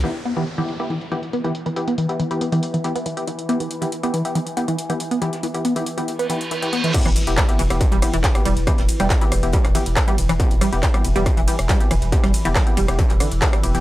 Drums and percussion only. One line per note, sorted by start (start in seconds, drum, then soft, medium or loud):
0.04 closed hi-hat medium
0.15 closed hi-hat medium
0.25 closed hi-hat medium
0.37 closed hi-hat medium
0.47 closed hi-hat medium
0.58 closed hi-hat medium
0.69 closed hi-hat medium
0.80 closed hi-hat medium
0.90 closed hi-hat medium
1.01 closed hi-hat medium
1.12 closed hi-hat medium
1.23 closed hi-hat medium
1.23 closed hi-hat soft
1.33 closed hi-hat medium
1.44 closed hi-hat medium
1.54 closed hi-hat medium
1.66 closed hi-hat medium
1.76 closed hi-hat medium
1.87 snare soft
1.87 closed hi-hat medium
1.98 closed hi-hat medium
2.09 closed hi-hat medium
2.19 closed hi-hat medium
2.31 closed hi-hat medium
2.41 closed hi-hat medium
2.52 closed hi-hat medium
2.62 closed hi-hat medium
2.74 closed hi-hat medium
2.84 closed hi-hat medium
2.96 closed hi-hat medium
3.05 closed hi-hat medium
3.17 closed hi-hat medium
3.27 closed hi-hat medium
3.39 closed hi-hat medium
3.39 closed hi-hat soft
3.49 closed hi-hat medium
3.60 closed hi-hat medium
3.71 closed hi-hat medium
3.82 closed hi-hat medium
3.92 closed hi-hat medium
4.03 closed hi-hat medium
4.14 closed hi-hat medium
4.25 closed hi-hat medium
4.35 closed hi-hat medium
4.47 closed hi-hat soft
4.56 closed hi-hat medium
4.68 closed hi-hat medium
4.68 closed hi-hat soft
4.79 closed hi-hat medium
4.90 closed hi-hat medium
5.00 closed hi-hat medium
5.11 closed hi-hat medium
5.22 closed hi-hat medium
5.33 snare soft
5.33 closed hi-hat medium
5.43 closed hi-hat medium
5.54 closed hi-hat soft
5.65 closed hi-hat medium
5.76 closed hi-hat soft
5.86 closed hi-hat medium
5.98 closed hi-hat medium
6.08 closed hi-hat medium
6.19 closed hi-hat soft
6.30 closed hi-hat medium
6.41 closed hi-hat medium
6.51 closed hi-hat medium
6.62 closed hi-hat medium
6.73 closed hi-hat medium
6.84 closed hi-hat soft
6.94 kick loud
6.94 closed hi-hat medium
6.94 closed hi-hat loud
6.94 crash loud
7.06 cross-stick medium
7.06 closed hi-hat medium
7.16 closed hi-hat medium
7.16 open hi-hat loud
7.16 ride medium
7.27 closed hi-hat medium
7.37 kick loud
7.37 cross-stick medium
7.37 snare loud
7.37 clap loud
7.37 closed hi-hat medium
7.37 closed hi-hat loud
7.49 closed hi-hat medium
7.59 closed hi-hat medium
7.59 open hi-hat medium
7.59 ride medium
7.70 cross-stick medium
7.70 closed hi-hat medium
7.81 kick loud
7.81 closed hi-hat loud
7.81 closed hi-hat medium
7.92 closed hi-hat medium
8.02 cross-stick medium
8.02 closed hi-hat medium
8.02 open hi-hat loud
8.02 ride medium
8.13 closed hi-hat soft
8.13 closed hi-hat medium
8.24 kick loud
8.24 snare loud
8.24 clap loud
8.24 closed hi-hat loud
8.24 closed hi-hat medium
8.35 cross-stick medium
8.35 closed hi-hat medium
8.45 closed hi-hat medium
8.45 open hi-hat medium
8.45 ride medium
8.57 closed hi-hat medium
8.67 kick loud
8.67 cross-stick medium
8.67 closed hi-hat loud
8.78 snare soft
8.78 closed hi-hat medium
8.88 closed hi-hat medium
8.88 open hi-hat loud
8.88 ride medium
9.00 cross-stick medium
9.00 closed hi-hat soft
9.00 closed hi-hat medium
9.10 kick loud
9.10 snare loud
9.10 clap loud
9.10 closed hi-hat loud
9.21 closed hi-hat medium
9.32 cross-stick medium
9.32 closed hi-hat medium
9.32 open hi-hat medium
9.32 ride medium
9.43 closed hi-hat medium
9.52 kick loud
9.52 closed hi-hat medium
9.52 closed hi-hat loud
9.65 cross-stick medium
9.65 clap soft
9.65 closed hi-hat medium
9.75 closed hi-hat medium
9.75 open hi-hat loud
9.75 ride medium
9.86 closed hi-hat medium
9.96 kick loud
9.96 cross-stick medium
9.96 snare loud
9.96 clap loud
9.96 closed hi-hat loud
9.96 closed hi-hat medium
10.08 closed hi-hat medium
10.18 closed hi-hat medium
10.18 open hi-hat loud
10.18 ride medium
10.29 cross-stick medium
10.29 closed hi-hat soft
10.29 closed hi-hat medium
10.40 kick loud
10.40 closed hi-hat loud
10.40 closed hi-hat medium
10.51 closed hi-hat medium
10.61 cross-stick medium
10.61 closed hi-hat medium
10.61 open hi-hat loud
10.61 ride medium
10.73 closed hi-hat medium
10.83 kick loud
10.83 snare loud
10.83 clap loud
10.83 closed hi-hat medium
10.94 cross-stick medium
10.94 closed hi-hat medium
11.04 closed hi-hat medium
11.04 open hi-hat loud
11.04 ride medium
11.16 closed hi-hat medium
11.26 kick loud
11.26 cross-stick medium
11.26 closed hi-hat medium
11.37 closed hi-hat medium
11.47 closed hi-hat medium
11.47 open hi-hat loud
11.47 ride medium
11.59 cross-stick medium
11.59 closed hi-hat medium
11.59 closed hi-hat soft
11.69 kick loud
11.69 snare loud
11.69 clap loud
11.69 closed hi-hat medium
11.80 closed hi-hat medium
11.91 cross-stick medium
11.91 closed hi-hat medium
11.91 open hi-hat loud
11.91 ride medium
12.02 closed hi-hat medium
12.12 kick loud
12.12 closed hi-hat loud
12.12 closed hi-hat medium
12.23 cross-stick medium
12.23 snare soft
12.23 closed hi-hat medium
12.33 closed hi-hat medium
12.33 open hi-hat loud
12.33 ride medium
12.45 closed hi-hat soft
12.45 closed hi-hat medium
12.56 kick loud
12.56 cross-stick medium
12.56 snare loud
12.56 clap loud
12.56 closed hi-hat medium
12.67 closed hi-hat medium
12.77 closed hi-hat medium
12.77 open hi-hat medium
12.77 ride medium
12.88 cross-stick medium
12.88 closed hi-hat medium
12.99 kick loud
12.99 closed hi-hat loud
12.99 closed hi-hat medium
13.10 clap soft
13.10 closed hi-hat medium
13.20 cross-stick medium
13.20 closed hi-hat medium
13.20 open hi-hat loud
13.20 ride medium
13.32 closed hi-hat medium
13.42 kick loud
13.42 snare loud
13.42 clap loud
13.42 closed hi-hat medium
13.42 closed hi-hat loud
13.53 cross-stick medium
13.53 closed hi-hat medium
13.63 closed hi-hat medium
13.63 open hi-hat loud
13.63 ride medium
13.75 closed hi-hat medium
13.75 closed hi-hat soft